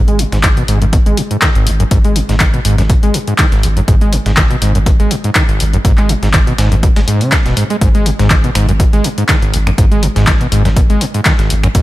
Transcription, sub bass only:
0.00 0.26 G#1 medium
0.32 0.62 G#1 medium
0.68 0.99 G#1 medium
1.06 1.14 G#1 medium
1.55 1.85 G#1 loud
1.91 2.22 G#1 loud
2.29 2.59 G#1 medium
2.65 2.96 G#1 medium
3.03 3.11 G#1 medium
3.52 3.82 G#1 loud
3.88 4.19 G#1 loud
4.26 4.56 G#1 medium
4.62 4.93 G#1 medium
5.00 5.07 G#1 medium
5.49 5.79 G#1 loud
5.85 6.16 G#1 loud
6.23 6.53 G#1 medium
6.59 6.90 G#1 medium
6.96 7.04 G#1 medium
7.46 7.53 D#1 loud
7.81 8.12 G#1 medium
8.19 8.49 G#1 medium
8.55 8.86 G#1 medium
8.93 9.01 G#1 medium
9.42 9.72 G#1 loud
9.78 10.09 G#1 medium
10.16 10.46 G#1 medium
10.52 10.83 G#1 medium
10.90 10.97 G#1 medium
11.39 11.69 G#1 loud
11.75 11.82 G#1 loud

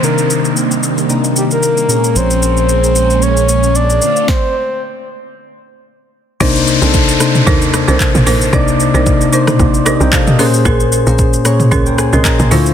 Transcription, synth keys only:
0.02 1.07 C3 medium
0.02 1.07 A#3 medium
0.02 1.08 D4 medium
0.02 1.08 D#4 medium
0.02 1.09 C5 medium
1.09 1.89 C3 medium
1.09 1.88 A#3 medium
1.09 1.89 D4 medium
1.09 1.90 D#4 medium
1.09 1.90 A#4 medium
1.88 3.97 A#2 medium
1.88 3.98 A#3 medium
1.88 3.98 C#4 medium
1.88 3.98 G#4 medium
1.88 3.99 A#4 medium
6.40 6.73 C3 loud
6.40 6.73 A#3 loud
6.40 6.73 D4 loud
6.40 6.74 D#4 loud
6.40 6.74 C5 loud
6.81 7.13 C3 medium
6.81 7.13 A#3 medium
6.81 7.13 D4 medium
6.81 7.14 D#4 medium
6.81 7.14 A4 loud
7.20 8.06 C3 medium
7.20 8.06 A#3 medium
7.20 8.06 D4 medium
7.20 8.06 D#4 medium
7.20 8.06 C5 loud
8.53 9.18 C3 loud
8.53 9.18 A#3 loud
8.53 9.18 D4 loud
8.53 9.18 D#4 loud
8.53 9.18 D5 loud
9.32 9.76 C3 loud
9.32 9.76 A#3 medium
9.32 9.76 D4 medium
9.32 9.77 D#4 medium
9.32 9.77 C5 loud
9.86 10.00 G4 medium
9.86 10.00 D#5 medium
10.01 10.12 A#4 medium
10.01 10.12 G5 medium
10.13 10.27 A4 medium
10.13 10.26 F5 medium
10.27 10.53 G4 medium
10.27 10.52 D#5 medium
10.38 10.92 A#2 loud
10.38 10.92 A#3 medium
10.38 10.92 C#4 medium
10.38 10.92 G#4 medium
10.38 10.93 C5 loud
11.06 11.38 A#2 medium
11.06 11.38 A#3 medium
11.06 11.38 C#4 medium
11.06 11.38 G#4 medium
11.06 11.39 C5 loud
11.45 12.30 A#2 medium
11.45 12.31 A#3 medium
11.45 12.31 C#4 medium
11.45 12.31 G#4 medium
11.45 11.72 C#5 loud
11.87 11.98 A#4 medium
11.87 11.98 G5 medium
11.98 12.13 C5 medium
11.98 12.12 G#5 medium
12.13 12.25 D#5 medium
12.13 12.24 C6 medium
12.25 12.39 C#5 medium
12.25 12.39 A#5 medium
12.40 12.51 C5 medium
12.40 12.65 G#5 medium
12.51 12.74 D3 loud
12.51 12.74 A3 medium
12.51 12.74 E4 medium
12.51 12.74 F4 medium
12.51 12.74 C5 loud

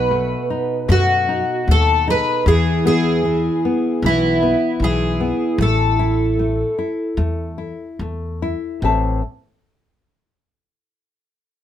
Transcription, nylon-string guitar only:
0.00 2.43 B2 medium
0.00 0.10 D#4 medium
0.11 0.49 A3 medium
0.50 0.88 D#4 medium
0.88 1.27 A3 medium
1.29 1.67 D#4 medium
1.69 2.07 A3 medium
2.08 2.45 D#4 medium
2.47 3.24 E3 medium
2.85 3.23 B3 medium
3.25 3.63 E3 medium
3.65 4.02 B3 medium
4.04 4.41 E3 medium
4.42 4.80 B3 medium
4.82 5.19 E3 medium
5.20 5.58 B3 medium
5.61 6.38 A3 medium
5.99 6.37 E4 medium
6.39 6.77 A3 medium
6.79 7.17 E4 medium
7.18 7.57 A3 medium
7.58 7.99 E4 medium
8.01 8.42 A3 medium
8.42 8.82 E4 medium
8.83 9.20 A2 medium
8.83 9.21 E3 soft
8.83 9.21 C4 soft
8.83 9.21 A4 soft
8.83 9.21 E5 soft
8.83 9.22 A5 medium

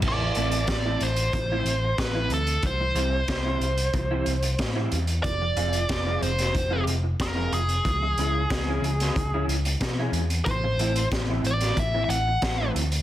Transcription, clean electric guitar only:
0.21 muted clean electric guitar stroke soft
0.36 0.57 E3 medium
0.36 0.58 A3 medium
0.36 0.58 C4 medium
0.36 0.58 E4 medium
0.69 muted clean electric guitar stroke soft
0.86 1.07 E3 medium
0.86 1.07 A3 medium
0.86 1.07 C4 medium
0.86 1.07 E4 medium
1.34 muted clean electric guitar stroke soft
1.52 1.73 E3 medium
1.52 1.73 A3 medium
1.52 1.72 C4 medium
1.52 1.72 E4 loud
1.84 muted clean electric guitar stroke soft
2.15 2.37 E3 medium
2.15 2.37 A3 medium
2.15 2.37 C4 medium
2.15 2.36 E4 medium
2.80 muted clean electric guitar stroke soft
2.95 3.17 E3 medium
2.95 3.17 G3 medium
2.95 3.18 C4 medium
2.95 3.18 E4 medium
3.28 muted clean electric guitar stroke soft
3.45 3.67 E3 medium
3.45 3.67 G3 medium
3.45 3.67 C4 medium
3.45 3.67 E4 medium
3.94 muted clean electric guitar stroke soft
4.11 4.33 E3 medium
4.11 4.33 G3 medium
4.11 4.32 C4 medium
4.11 4.32 E4 medium
4.43 muted clean electric guitar stroke soft
4.75 4.97 E3 medium
4.75 4.97 G3 medium
4.75 4.97 C4 medium
4.75 4.97 E4 medium
5.41 muted clean electric guitar stroke soft
5.56 5.78 F3 medium
5.56 5.78 G#3 medium
5.56 5.79 C4 loud
5.56 5.79 F4 medium
5.89 muted clean electric guitar stroke soft
6.06 6.28 F3 medium
6.06 6.28 G#3 medium
6.06 6.28 C4 medium
6.06 6.28 F4 medium
6.55 muted clean electric guitar stroke soft
6.70 6.93 F3 medium
6.70 6.93 G#3 medium
6.70 6.93 C4 medium
6.70 6.92 F4 medium
7.04 muted clean electric guitar stroke soft
7.36 7.58 F3 medium
7.36 7.58 G#3 medium
7.36 7.58 C4 medium
7.36 7.57 F4 medium
8.02 muted clean electric guitar stroke soft
8.18 8.40 C#3 medium
8.18 8.40 G#3 medium
8.18 8.40 C#4 medium
8.18 8.40 E4 medium
8.51 muted clean electric guitar stroke soft
8.68 8.89 C#3 medium
8.68 8.89 G#3 medium
8.68 8.89 C#4 medium
8.68 8.89 E4 medium
9.18 muted clean electric guitar stroke soft
9.34 9.55 C#3 medium
9.34 9.54 G#3 medium
9.34 9.54 C#4 medium
9.34 9.54 E4 medium
9.66 muted clean electric guitar stroke soft
9.99 10.20 C#3 medium
9.99 10.20 G#3 medium
9.99 10.20 C#4 medium
9.99 10.20 E4 medium
10.64 muted clean electric guitar stroke soft
10.79 11.00 E3 medium
10.79 11.01 A3 medium
10.79 11.01 C4 medium
10.79 11.01 E4 medium
11.13 muted clean electric guitar stroke soft
11.30 11.51 E3 medium
11.30 11.51 A3 medium
11.30 11.50 C4 medium
11.30 11.50 E4 medium
11.79 muted clean electric guitar stroke soft
11.94 12.15 E3 medium
11.94 12.15 A3 medium
11.94 12.15 C4 medium
11.94 12.15 E4 medium
12.28 muted clean electric guitar stroke soft
12.61 12.82 E3 medium
12.61 12.81 A3 medium
12.61 12.81 C4 medium
12.61 12.81 E4 medium

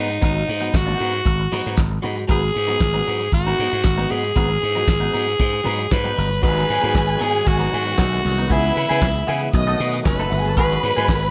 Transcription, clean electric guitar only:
0.00 0.11 F#3 medium
0.09 muted clean electric guitar stroke soft
0.21 0.41 F#3 medium
0.21 0.35 B3 medium
0.21 0.34 D#4 medium
0.35 muted clean electric guitar stroke soft
0.47 muted clean electric guitar stroke soft
0.60 0.72 F#3 soft
0.60 0.72 B3 medium
0.60 0.72 D#4 medium
0.73 muted clean electric guitar stroke soft
0.86 0.98 F#3 medium
0.86 0.99 B3 medium
0.86 0.99 D#4 medium
0.99 1.15 F#3 medium
0.99 1.13 B3 medium
0.99 1.12 D#4 medium
1.14 muted clean electric guitar stroke soft
1.25 muted clean electric guitar stroke soft
1.40 muted clean electric guitar stroke soft
1.52 1.65 F#3 medium
1.52 1.65 B3 loud
1.52 1.64 D#4 loud
1.65 1.80 F#3 medium
1.65 1.80 B3 medium
1.65 1.79 D#4 medium
1.91 muted clean electric guitar stroke medium
2.02 2.22 F#3 medium
2.02 2.16 B3 medium
2.02 2.15 D#4 medium
2.16 muted clean electric guitar stroke medium
2.27 2.48 F#3 medium
2.27 2.41 B3 medium
2.27 2.40 D#4 medium
2.41 muted clean electric guitar stroke soft
2.54 muted clean electric guitar stroke soft
2.67 2.79 F#3 medium
2.67 2.79 B3 medium
2.67 2.80 D#4 medium
2.80 muted clean electric guitar stroke soft
2.94 3.05 F#3 medium
2.94 3.06 B3 medium
2.94 3.06 D#4 medium
3.06 3.22 F#3 medium
3.06 3.19 B3 medium
3.06 3.19 D#4 medium
3.20 muted clean electric guitar stroke soft
3.33 muted clean electric guitar stroke soft
3.46 3.57 F#3 medium
3.46 3.58 B3 medium
3.46 3.58 D#4 medium
3.58 3.74 F#3 medium
3.58 3.71 B3 medium
3.58 3.70 D#4 medium
3.72 muted clean electric guitar stroke soft
3.83 muted clean electric guitar stroke soft
3.97 4.08 F#3 medium
3.97 4.09 B3 medium
3.97 4.09 D#4 medium
4.09 4.25 F#3 medium
4.09 4.23 B3 medium
4.09 4.22 D#4 medium
4.23 muted clean electric guitar stroke soft
4.36 4.55 F#3 medium
4.36 4.49 B3 medium
4.36 4.48 D#4 medium
4.49 muted clean electric guitar stroke soft
4.61 muted clean electric guitar stroke soft
4.75 4.86 F#3 medium
4.75 4.87 B3 soft
4.75 4.87 D#4 medium
4.87 muted clean electric guitar stroke soft
5.00 5.11 F#3 medium
5.00 5.12 B3 medium
5.00 5.12 D#4 medium
5.12 5.29 F#3 medium
5.12 5.26 B3 medium
5.12 5.25 D#4 medium
5.26 muted clean electric guitar stroke soft
5.39 muted clean electric guitar stroke soft
5.53 muted clean electric guitar stroke soft
5.64 5.84 F#3 medium
5.64 5.78 B3 medium
5.64 5.77 D#4 medium
5.79 muted clean electric guitar stroke soft
5.91 muted clean electric guitar stroke soft
6.04 6.15 F#3 medium
6.04 6.16 B3 medium
6.04 6.16 D#4 medium
6.16 6.32 F#3 medium
6.16 6.29 B3 medium
6.16 6.29 D#4 medium
6.30 muted clean electric guitar stroke soft
6.42 6.66 F#3 medium
6.42 6.67 B3 medium
6.42 6.67 D#4 medium
6.68 muted clean electric guitar stroke soft
6.81 6.97 F#3 soft
6.81 6.97 B3 medium
6.81 6.96 D#4 medium
7.08 muted clean electric guitar stroke soft
7.19 7.40 F#3 medium
7.19 7.33 B3 medium
7.19 7.32 D#4 medium
7.33 muted clean electric guitar stroke soft
7.46 muted clean electric guitar stroke soft
7.59 7.71 F#3 medium
7.59 7.71 B3 medium
7.59 7.71 D#4 medium
7.72 muted clean electric guitar stroke soft
7.85 muted clean electric guitar stroke soft
7.98 8.18 F#3 medium
7.98 8.11 B3 medium
7.98 8.10 D#4 medium
8.11 muted clean electric guitar stroke soft
8.24 muted clean electric guitar stroke soft
8.38 8.53 F#3 soft
8.38 8.49 B3 medium
8.38 8.50 D#4 medium
8.50 8.74 B3 medium
8.50 8.74 E4 medium
8.50 8.75 G#4 medium
8.76 muted clean electric guitar stroke soft
8.89 9.04 B3 medium
8.89 9.04 E4 medium
8.89 9.04 G#4 medium
9.15 muted clean electric guitar stroke soft
9.27 9.47 B3 medium
9.27 9.42 E4 medium
9.27 9.41 G#4 medium
9.42 muted clean electric guitar stroke soft
9.54 muted clean electric guitar stroke soft
9.67 9.78 B3 medium
9.67 9.79 D#4 medium
9.67 9.79 A4 medium
9.79 muted clean electric guitar stroke soft
9.94 muted clean electric guitar stroke soft
10.06 muted clean electric guitar stroke soft
10.20 10.31 B3 medium
10.20 10.32 D#4 medium
10.20 10.32 A4 medium
10.32 muted clean electric guitar stroke soft
10.46 muted clean electric guitar stroke soft
10.58 10.81 B3 medium
10.58 10.82 F#4 medium
10.58 10.82 G#4 medium
10.84 muted clean electric guitar stroke soft
10.96 11.11 B3 medium
10.96 11.11 F#4 soft
10.96 11.11 G#4 medium
11.23 muted clean electric guitar stroke soft

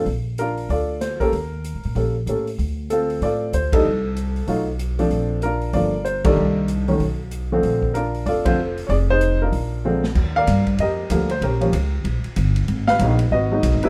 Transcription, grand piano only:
0.39 0.98 D4 medium
0.39 0.71 F4 medium
0.39 0.68 A#4 medium
0.70 1.30 F4 medium
0.70 1.20 A4 medium
0.70 0.99 D5 medium
1.01 1.21 C5 medium
1.20 1.32 A#3 medium
1.20 1.32 C#4 medium
1.20 1.32 G4 medium
1.20 1.32 A4 medium
1.20 2.11 A#4 medium
1.96 2.13 A#3 soft
1.96 2.14 C#4 soft
1.96 2.14 G4 soft
1.96 2.14 A4 medium
2.28 2.45 A#3 medium
2.28 2.46 C#4 soft
2.28 2.46 G4 soft
2.28 2.46 A4 medium
2.90 3.50 C4 medium
2.90 3.23 F4 medium
2.90 3.20 A4 medium
3.23 3.82 F4 medium
3.23 3.72 A4 medium
3.23 3.52 D5 medium
3.54 3.74 C5 medium
3.73 3.84 G3 medium
3.73 3.84 A#3 medium
3.73 3.84 D4 medium
3.73 3.84 D#4 medium
3.73 4.64 A4 medium
4.48 4.65 F#3 medium
4.48 4.66 A3 medium
4.48 4.66 D#4 soft
4.48 4.66 F4 medium
4.99 5.40 F3 medium
4.99 5.40 A3 medium
4.99 5.40 C4 medium
4.99 5.41 D4 medium
5.43 5.73 D4 medium
5.43 5.73 F4 medium
5.43 5.75 A#4 medium
5.74 5.92 F3 medium
5.74 5.92 A3 soft
5.74 5.92 A#3 medium
5.74 5.93 D4 medium
5.74 6.34 F4 medium
5.74 6.35 A#4 medium
5.74 6.03 D5 medium
6.05 6.25 C5 medium
6.24 6.66 D#3 medium
6.24 6.66 G3 medium
6.24 6.66 A#3 medium
6.24 6.98 D4 medium
6.24 7.17 D#4 medium
6.24 7.16 A4 medium
6.24 6.67 D5 medium
6.88 6.99 D#3 medium
6.88 6.99 F#3 medium
6.88 7.00 A3 medium
6.88 6.99 C#4 medium
7.52 7.93 D3 medium
7.52 7.93 F3 medium
7.52 7.93 A3 medium
7.52 7.93 C4 medium
7.94 8.55 D4 medium
7.94 8.27 F4 medium
7.94 8.24 A#4 medium
8.26 8.46 F4 medium
8.26 8.46 A4 medium
8.26 8.45 D5 medium
8.45 8.57 D3 medium
8.45 8.57 F3 soft
8.45 8.57 A3 soft
8.45 8.57 C4 medium
8.45 8.87 F4 medium
8.45 8.87 A4 medium
8.45 8.75 C5 medium
8.87 8.90 C#5 medium
8.87 8.95 D5 medium
8.92 9.11 G#4 medium
9.10 9.51 D#4 medium
9.10 9.51 G#4 medium
9.10 9.39 C5 loud
9.42 10.01 D4 medium
9.42 10.01 F4 soft
9.42 10.01 A#4 medium
9.85 10.02 D3 medium
9.85 10.02 F3 medium
9.85 10.03 G#3 medium
9.85 10.03 C4 medium
10.36 10.80 A#4 medium
10.36 10.96 D5 medium
10.36 10.65 F5 loud
10.80 11.40 G4 medium
10.80 11.40 A#4 medium
10.80 11.09 D#5 medium
11.11 11.28 D3 medium
11.11 11.29 F3 medium
11.11 11.29 G3 medium
11.11 11.29 A#3 medium
11.31 11.42 C5 medium
11.43 11.61 C#4 medium
11.43 12.02 G4 medium
11.43 11.90 A#4 medium
11.61 11.72 F3 medium
11.61 11.72 G3 medium
11.61 11.73 A#3 medium
11.61 11.73 C#4 medium
12.88 13.32 B4 medium
12.88 13.17 F5 loud
13.01 13.18 F#3 medium
13.01 13.18 A#3 medium
13.01 13.18 B3 medium
13.01 13.19 D#4 medium
13.32 13.89 F#4 medium
13.32 13.82 B4 medium
13.32 13.61 D#5 medium
13.52 13.81 F#3 medium
13.52 13.81 G#3 medium
13.52 13.81 B3 medium
13.52 13.81 D#4 medium
13.84 13.89 G3 medium
13.84 13.89 A#3 medium
13.84 13.89 D4 medium
13.84 13.89 E4 medium
13.84 13.89 B4 medium

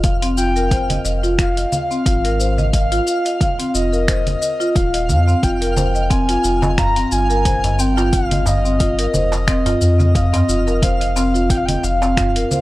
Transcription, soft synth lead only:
0.37 1.01 G5 loud
1.39 2.70 F5 loud
2.73 3.71 F5 loud
3.75 4.77 D#5 loud
4.76 5.45 F5 loud
5.43 6.12 G5 loud
6.11 6.78 G#5 loud
6.78 7.13 A#5 loud
7.12 7.81 G#5 loud
7.80 8.15 G5 loud
8.14 8.49 F5 loud
8.47 10.15 D#5 loud
10.16 10.85 D#5 loud
10.83 11.52 F5 loud
11.51 11.59 G5 loud
11.57 11.67 F5 medium
11.65 11.86 G5 loud
11.84 12.61 F5 loud

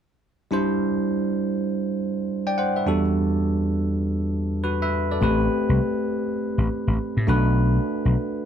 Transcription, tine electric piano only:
0.51 2.82 G3 medium
0.51 2.83 D4 medium
0.51 2.83 E4 medium
0.51 1.97 C5 medium
2.47 2.57 D5 medium
2.47 2.57 G5 medium
2.58 2.76 C5 medium
2.58 2.75 F#5 medium
2.76 3.04 B4 soft
2.76 3.04 E5 medium
2.86 5.18 E2 medium
2.86 5.18 G3 medium
2.86 5.18 D4 medium
2.86 4.60 F#4 medium
2.86 4.61 A4 medium
4.64 4.81 F#4 medium
4.64 4.81 B4 medium
4.82 5.10 B4 medium
4.82 5.10 E5 medium
5.11 5.40 A4 soft
5.11 5.39 D5 medium
5.21 7.23 A3 medium
5.21 7.24 C4 medium
5.21 7.24 G4 medium
5.21 7.25 B4 medium
7.27 8.45 A3 medium
7.27 8.45 D4 medium
7.27 8.45 F#4 medium
7.27 8.45 B4 medium

